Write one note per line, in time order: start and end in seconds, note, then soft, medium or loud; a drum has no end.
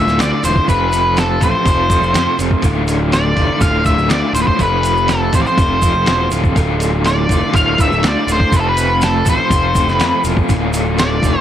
0.00 0.18 A2 medium
0.00 0.19 D3 medium
0.00 0.21 A3 medium
0.00 0.21 F4 medium
0.00 0.21 E5 medium
0.07 0.19 D1 medium
0.07 snare soft
0.07 shaker soft
0.18 0.66 D2 medium
0.18 0.31 D2 medium
0.18 0.66 A2 medium
0.18 0.45 D3 medium
0.18 0.44 A3 medium
0.18 0.42 F4 medium
0.18 0.44 D5 medium
0.18 snare loud
0.18 open hi-hat medium
0.18 shaker medium
0.43 0.55 E1 medium
0.43 0.68 D3 medium
0.43 0.69 A3 medium
0.43 0.70 F4 medium
0.43 0.67 C5 medium
0.43 open hi-hat medium
0.43 shaker medium
0.56 kick medium
0.67 1.37 F1 medium
0.67 1.65 F2 medium
0.67 1.66 C3 medium
0.67 1.44 F3 medium
0.67 1.42 A3 medium
0.67 1.41 C4 medium
0.67 1.40 F4 medium
0.67 1.19 B4 medium
0.67 kick medium
0.67 open hi-hat medium
0.67 shaker medium
0.93 open hi-hat soft
0.93 shaker medium
1.17 1.43 A4 medium
1.17 snare loud
1.17 open hi-hat medium
1.17 shaker medium
1.40 1.53 A1 medium
1.40 1.64 F3 medium
1.40 1.66 A3 medium
1.40 1.66 C4 medium
1.40 1.68 F4 medium
1.40 2.36 C5 medium
1.40 kick medium
1.40 open hi-hat soft
1.40 shaker medium
1.65 2.00 F1 medium
1.65 1.92 F3 medium
1.65 1.91 A3 medium
1.65 1.89 C4 medium
1.65 1.89 F4 medium
1.65 kick loud
1.65 open hi-hat medium
1.65 shaker medium
1.89 2.15 F3 medium
1.89 2.15 A3 medium
1.89 2.15 C4 medium
1.89 2.17 F4 medium
1.89 kick medium
1.89 open hi-hat soft
1.89 shaker medium
2.02 2.14 F1 medium
2.02 shaker soft
2.13 2.62 F2 medium
2.13 2.26 F2 medium
2.13 2.62 C3 medium
2.13 2.40 F3 medium
2.13 2.40 A3 medium
2.13 2.38 C4 medium
2.13 2.37 F4 medium
2.13 snare loud
2.13 open hi-hat medium
2.13 shaker medium
2.37 2.51 F1 medium
2.37 2.64 F3 medium
2.37 2.64 A3 medium
2.37 2.62 C4 medium
2.37 2.65 F4 medium
2.37 open hi-hat soft
2.37 shaker medium
2.51 kick medium
2.62 3.33 D1 medium
2.62 3.61 D2 medium
2.62 3.59 A2 medium
2.62 3.38 D3 medium
2.62 3.37 A3 medium
2.62 3.35 F4 medium
2.62 kick medium
2.62 open hi-hat medium
2.62 shaker medium
2.88 open hi-hat soft
2.88 shaker medium
3.12 3.58 D5 medium
3.12 snare loud
3.12 open hi-hat soft
3.12 shaker medium
3.36 3.48 F1 medium
3.36 3.60 D3 medium
3.36 3.62 A3 medium
3.36 3.63 F4 medium
3.36 kick medium
3.36 open hi-hat soft
3.60 3.96 D1 medium
3.60 4.09 A2 medium
3.60 3.88 D3 medium
3.60 3.87 A3 medium
3.60 3.85 F4 medium
3.60 3.84 F5 loud
3.60 kick loud
3.60 open hi-hat medium
3.60 shaker medium
3.85 4.10 D3 medium
3.85 4.11 A3 medium
3.85 4.12 F4 medium
3.85 4.11 E5 medium
3.85 kick medium
3.85 open hi-hat soft
3.85 shaker medium
3.98 4.09 D1 medium
3.98 shaker soft
4.09 4.58 D2 medium
4.09 4.22 D2 medium
4.09 4.58 A2 medium
4.09 4.37 D3 medium
4.09 4.36 A3 medium
4.09 4.34 F4 medium
4.09 4.34 D5 medium
4.09 snare loud
4.09 open hi-hat medium
4.09 shaker medium
4.33 4.46 D1 medium
4.33 4.61 A3 medium
4.33 4.61 F4 medium
4.33 4.41 C5 medium
4.33 open hi-hat soft
4.33 shaker medium
4.38 4.60 D3 medium
4.38 4.47 B4 medium
4.47 4.60 C5 medium
4.47 kick medium
4.59 5.29 F1 medium
4.59 5.57 F2 medium
4.59 5.58 C3 medium
4.59 5.36 F3 medium
4.59 5.35 A3 medium
4.59 5.33 C4 medium
4.59 5.32 F4 medium
4.59 5.11 B4 medium
4.59 kick medium
4.59 open hi-hat medium
4.59 shaker medium
4.83 open hi-hat medium
4.83 shaker medium
4.97 shaker soft
5.08 5.34 A4 medium
5.08 snare medium
5.08 open hi-hat medium
5.08 shaker medium
5.33 5.45 A1 medium
5.33 5.57 F3 medium
5.33 5.59 A3 medium
5.33 5.58 C4 medium
5.33 5.61 F4 medium
5.33 5.41 C5 medium
5.33 kick medium
5.33 open hi-hat medium
5.33 shaker medium
5.42 5.47 D5 medium
5.46 6.27 C5 medium
5.46 shaker soft
5.58 5.93 F1 medium
5.58 5.85 F3 medium
5.58 5.84 A3 medium
5.58 5.82 C4 medium
5.58 5.81 F4 medium
5.58 kick loud
5.58 open hi-hat medium
5.58 shaker medium
5.82 6.07 F3 medium
5.82 6.08 A3 medium
5.82 6.08 C4 medium
5.82 6.09 F4 medium
5.82 kick medium
5.82 open hi-hat soft
5.82 shaker medium
5.96 6.07 F1 medium
6.06 6.30 E1 medium
6.06 6.54 F2 medium
6.06 6.55 C3 medium
6.06 6.34 F3 medium
6.06 6.33 A3 medium
6.06 6.31 C4 medium
6.06 6.31 F4 medium
6.06 snare loud
6.06 open hi-hat medium
6.06 shaker medium
6.31 6.53 D1 medium
6.31 6.58 F3 medium
6.31 6.59 A3 medium
6.31 6.55 C4 medium
6.31 6.59 F4 medium
6.31 open hi-hat soft
6.31 shaker medium
6.44 kick medium
6.44 shaker soft
6.56 7.26 D1 medium
6.56 7.54 D2 medium
6.56 7.53 A2 medium
6.56 7.32 D3 medium
6.56 7.31 A3 medium
6.56 7.29 F4 medium
6.56 kick medium
6.56 open hi-hat medium
6.56 shaker medium
6.80 open hi-hat soft
6.80 shaker medium
7.05 7.55 D5 medium
7.05 snare medium
7.05 open hi-hat medium
7.05 shaker medium
7.29 7.41 F1 medium
7.29 7.55 D3 medium
7.29 7.56 A3 medium
7.29 7.58 F4 medium
7.29 kick medium
7.29 open hi-hat soft
7.29 shaker medium
7.54 7.89 D1 medium
7.54 8.03 A2 medium
7.54 7.81 D3 medium
7.54 7.81 A3 medium
7.54 7.80 F5 loud
7.54 kick loud
7.54 open hi-hat medium
7.54 shaker medium
7.58 7.79 F4 medium
7.78 8.06 A3 medium
7.78 8.06 F4 medium
7.78 8.05 E5 medium
7.78 kick medium
7.78 open hi-hat soft
7.78 shaker medium
7.82 8.04 D3 medium
7.91 8.03 D1 medium
7.91 shaker soft
8.03 8.51 D2 medium
8.03 8.15 D2 medium
8.03 8.51 A2 medium
8.03 8.31 D3 medium
8.03 8.30 A3 medium
8.03 8.28 F4 medium
8.03 snare loud
8.03 open hi-hat medium
8.03 shaker medium
8.08 8.29 D5 loud
8.27 8.39 D1 medium
8.27 8.55 A3 medium
8.27 8.56 F4 medium
8.27 open hi-hat soft
8.27 shaker medium
8.32 8.53 D3 medium
8.32 8.55 C5 medium
8.40 kick medium
8.52 9.22 F1 medium
8.52 9.51 F2 medium
8.52 9.52 C3 medium
8.52 9.29 F3 medium
8.52 9.28 A3 medium
8.52 kick medium
8.52 open hi-hat medium
8.52 shaker medium
8.56 9.26 C4 medium
8.56 9.26 F4 medium
8.56 8.67 A4 medium
8.56 8.60 B4 medium
8.69 9.04 B4 medium
8.77 open hi-hat medium
8.77 shaker loud
9.02 9.28 A4 medium
9.02 snare medium
9.02 open hi-hat medium
9.02 shaker medium
9.26 9.38 A1 medium
9.26 9.50 F3 medium
9.26 9.51 A3 medium
9.26 9.52 C4 medium
9.26 9.54 F4 medium
9.26 9.92 C5 medium
9.26 kick medium
9.26 open hi-hat soft
9.26 shaker medium
9.50 9.85 F1 medium
9.50 9.79 F3 medium
9.50 9.78 A3 medium
9.50 9.76 C4 medium
9.50 9.75 F4 medium
9.50 kick loud
9.50 open hi-hat medium
9.50 shaker medium
9.75 10.01 A3 medium
9.75 10.01 C4 medium
9.75 10.02 F4 medium
9.75 kick medium
9.75 open hi-hat soft
9.75 shaker medium
9.79 10.00 F3 medium
9.88 9.99 F1 medium
9.88 10.22 B4 medium
9.88 snare soft
9.88 shaker soft
9.99 10.47 F2 medium
9.99 10.12 F2 medium
9.99 10.48 C3 medium
9.99 10.27 F3 medium
9.99 10.26 A3 medium
9.99 10.24 C4 medium
9.99 10.23 F4 medium
9.99 snare loud
9.99 open hi-hat medium
9.99 shaker medium
10.24 10.36 E1 medium
10.24 10.49 F3 medium
10.24 10.50 A3 medium
10.24 10.48 C4 medium
10.24 10.51 F4 medium
10.24 open hi-hat soft
10.24 shaker medium
10.37 kick medium
10.48 11.19 D1 medium
10.48 11.41 D2 medium
10.48 11.41 A2 medium
10.48 11.24 D3 medium
10.48 11.23 A3 medium
10.48 11.21 F4 loud
10.48 kick medium
10.48 open hi-hat medium
10.48 shaker medium
10.74 open hi-hat soft
10.74 shaker medium
10.98 11.41 D5 loud
10.98 snare loud
10.98 open hi-hat medium
10.98 shaker medium
11.21 11.34 F1 medium
11.21 11.41 D3 medium
11.21 11.41 A3 medium
11.21 11.41 F4 medium
11.21 kick medium
11.21 open hi-hat medium
11.21 shaker medium